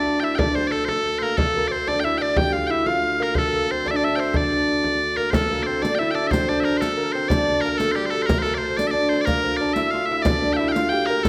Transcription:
Already playing: D2 D4 D5
0.06 frame drum
0.20 E4 E5 G5
0.24 E5
0.35 D5 G5, frame drum
0.39 D4
0.55 C4 C5, frame drum
0.67 A3 A4 D5
0.72 A4, frame drum
0.85 A4 C5, frame drum
0.89 A3
1.05 frame drum
1.19 A#3 C5
1.23 A#4
1.37 D2 A3 A4, frame drum
1.57 A#3
1.68 C4 D5
1.72 C5
1.87 D4 D5, frame drum
2.00 E5 G5
2.04 E4 E5, frame drum
2.18 D4 D5 G5
2.22 D5
2.37 G4 G5, frame drum
2.52 F4 F5
2.67 E4 E5 G5
2.71 E5
2.87 F4 F5, frame drum
3.03 frame drum
3.20 A#3 A#4
3.35 A3 A4 C5, frame drum
3.53 A#3
3.71 C4 C5
3.85 D4 D5, frame drum
3.90 E5
3.94 D4 D5
4.02 E5, frame drum
4.16 C4 G5
4.20 C5
4.34 D4 D5, frame drum
4.52 frame drum
4.84 frame drum
5.17 A#3 A#4, frame drum
5.31 D2 A4 C5, riq, frame drum
5.35 A3 A4
5.50 A#3
5.63 C5 D5
5.67 C4
5.82 D4 D5, riq, frame drum
5.95 E5 G5, frame drum
6.00 E4
6.11 D4 G5
6.15 D5
6.27 C5 E5, frame drum
6.33 C4 C5, riq
6.49 D4 D5
6.60 E5
6.64 A#4
6.77 A4 C5
6.82 A3 A4, riq, frame drum
6.96 A#3 A#4, frame drum
7.12 C4 C5
7.28 D4 D5, riq, frame drum
7.33 D5
7.61 A#3 A#4
7.77 A4, riq, frame drum
7.81 A3 A4
7.92 G3 G4 C5
7.97 G4
8.06 C5
8.10 A3 A4
8.15 A4
8.22 A#4 C5
8.29 A#3 A#4, riq, frame drum
8.39 A4 C5
8.46 A3, riq
8.54 C5 D5
8.63 C5
8.77 D4 D5, riq, frame drum
8.87 D5 E5
8.93 D4 D5, frame drum
9.09 C4 C5, frame drum
9.21 D5
9.25 D2 A#3 A#4, riq, frame drum
9.43 C4
9.57 D5
9.61 D4
9.73 E4 E5, riq, frame drum
9.91 F4 F5, frame drum
10.06 E5
10.11 E4 E5
10.22 D5, riq, frame drum
10.27 D4 D5
10.43 D5
10.53 E5 F5 G5
10.59 E4 E5
10.68 F5 G5
10.75 F4 F5, riq, frame drum
10.89 G4 G5, frame drum
11.06 A#3 A#4
11.10 A#4
11.23 A3 A4, riq, frame drum

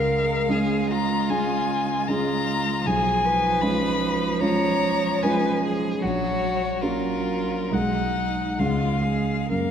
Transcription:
Already playing: C#2 G#3 A#4 F5
0.49 G#3 C#4 G#4
0.89 F4 A#5
1.29 G#3 C#4 G#4 G#5
2.08 G#3 C#4 F4 G#4 A#5
2.84 B1 F3 G#4 G#5
3.24 B4
3.61 G#3 C#4 F4 B5
4.41 G#3 C#4 F4 C#5 A#5
5.23 G#3 C#4 F4 B4 G#5
5.63 G#4
6.01 A#1 F#3 F#4 C#5
6.81 F#3 A#3 C#4 F4 F#4 A#4
7.71 B1 G#3 D#4 G#4 F#5
8.58 C#2 G#3 C#4 F4 G#4 F5
9.03 G#4
9.50 F#2 A#3 A#4 F5

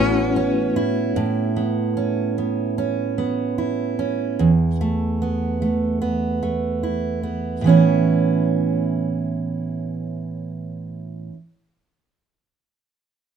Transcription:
Already playing: A1 A2 A3 B3 C#4 E4 F#4 B4
0.36 C#4
0.76 E4
1.16 A2
1.56 B3
1.97 C#4
2.38 B3
2.78 C#4
3.18 B3
3.58 E4
3.99 C#4
4.39 E2
4.81 A3
5.22 B3
5.62 A3
6.02 B3
6.43 A3
6.83 E4
7.23 B3
7.61 A2 E3
7.66 B3 C#4 E4

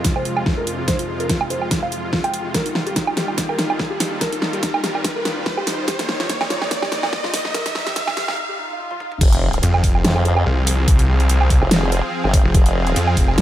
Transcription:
Already playing: F2 C3 G#3 F4, riser
0.04 F4, kick, snare, closed hi-hat
0.16 C5, low woodblock
0.25 F4, closed hi-hat
0.37 low woodblock
0.46 F4, kick, snare
0.57 A#4
0.67 F4, closed hi-hat
0.78 F4
0.88 C5, kick, snare, closed hi-hat
0.99 F4, closed hi-hat
1.09 F4
1.20 A#4, closed hi-hat
1.29 F4, kick, snare, closed hi-hat
1.41 low woodblock
1.50 C5, closed hi-hat
1.62 F4, low woodblock
1.71 F4, kick, snare, closed hi-hat
1.82 F5
1.92 F4, closed hi-hat
2.03 F4
2.13 F4, kick, snare
2.24 G5, closed hi-hat, low woodblock
2.34 F4, closed hi-hat
2.45 F4
2.54 D#2 D#3 G3 A#4, kick, snare, closed hi-hat
2.66 D#4, closed hi-hat
2.75 D#4, snare
2.87 G4, closed hi-hat
2.96 D#4, kick, snare, closed hi-hat
3.07 D#4, low woodblock
3.17 G4, snare, closed hi-hat
3.28 D#4, low woodblock
3.38 D#4, kick, snare, closed hi-hat
3.49 A#4, low woodblock
3.59 D#4, snare, closed hi-hat
3.70 D#4, low woodblock
3.79 D#4, kick, snare
3.90 G4
4.00 D#4, snare, open hi-hat
4.12 D#4
4.21 A#4, kick, snare, closed hi-hat
4.32 D#4, closed hi-hat
4.42 D#4, snare
4.53 G4, closed hi-hat
4.63 D#4, kick, snare, closed hi-hat
4.74 D#4, low woodblock
4.84 G4, snare, closed hi-hat
4.95 D#4, low woodblock
5.04 D#4, kick, snare, closed hi-hat
5.16 A#4
5.25 D#4, snare, closed hi-hat
5.37 D#4
5.46 D#4, kick, snare
5.57 G4, low woodblock
5.67 D#4, snare, open hi-hat
5.78 D#4
5.88 D#4 G4, kick, snare, closed hi-hat
5.99 A#3, snare, closed hi-hat
6.09 A#3, snare
6.20 F4, snare, closed hi-hat
6.29 A#3, kick, snare, closed hi-hat
6.41 A#3, snare, low woodblock
6.50 F4, snare, closed hi-hat
6.62 A#3, snare, low woodblock
6.71 A#3, kick, snare, closed hi-hat
6.82 G4, snare, low woodblock
6.92 A#3, snare, closed hi-hat
7.03 A#3, snare, low woodblock
7.13 A#3, kick, snare
7.24 F4, snare
7.34 A#3, snare, open hi-hat
7.45 A#3, snare
7.54 A#4, kick, snare, closed hi-hat
7.66 D#4, snare, closed hi-hat
7.75 D#4, snare
7.87 G4, snare, closed hi-hat
7.96 D#4, kick, snare, closed hi-hat
8.07 D#4, snare, low woodblock
8.17 G4, snare, open hi-hat
8.28 D#4, snare, low woodblock
8.38 D#4, swell
8.49 G4
8.59 D#4
8.70 D#4
8.80 D#4
8.91 F4, high tom
9.00 D#4, mid tom
9.12 D#4, mid tom
9.21 F1 F3 C4 G#4 F5, kick, closed hi-hat, crash, impact
9.33 closed hi-hat
9.53 closed hi-hat
9.63 F2, closed hi-hat
9.74 low woodblock
9.84 F1, kick, open hi-hat
9.95 low woodblock
10.05 F2, snare, closed hi-hat
10.16 low woodblock
10.25 closed hi-hat
10.37 low woodblock
10.46 C2
10.67 open hi-hat
10.88 kick, closed hi-hat
10.99 closed hi-hat
11.20 closed hi-hat
11.29 C2, closed hi-hat
11.41 low woodblock
11.50 kick, open hi-hat
11.62 F1, low woodblock
11.71 snare, closed hi-hat
11.92 closed hi-hat
12.24 G1, low woodblock
12.34 kick, open hi-hat
12.45 F1
12.54 F1, kick, closed hi-hat
12.66 closed hi-hat
12.87 closed hi-hat
12.96 F2, closed hi-hat
13.07 low woodblock
13.17 F1, kick, open hi-hat
13.28 low woodblock
13.38 F2, snare, closed hi-hat

